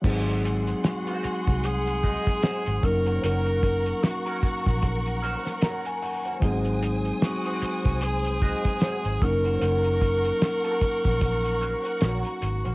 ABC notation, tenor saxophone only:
X:1
M:4/4
L:1/8
Q:"Swing 16ths" 1/4=75
K:Abmix
V:1 name="Tenor saxophone"
z2 G2 A3 B | B2 G3 z3 | z2 G2 A3 B- | B6 G2 |]